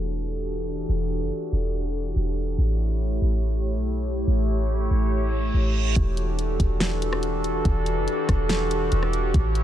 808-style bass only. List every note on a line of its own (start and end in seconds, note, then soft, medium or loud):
0.00 0.85 E1 medium
0.89 1.22 E1 loud
1.21 1.31 F#1 medium
1.52 2.13 E1 loud
2.16 2.56 E1 loud
2.58 3.19 A1 loud
3.22 3.76 A1 loud
3.75 4.25 B1 loud
4.27 4.88 A1 loud
4.91 5.51 A1 loud
5.54 5.95 A1 loud
5.96 6.57 E1 loud
6.60 7.61 E1 loud
7.65 7.98 E1 loud
7.97 8.07 F#1 loud
8.29 8.90 E1 loud
8.92 9.33 E1 loud
9.34 9.63 A1 loud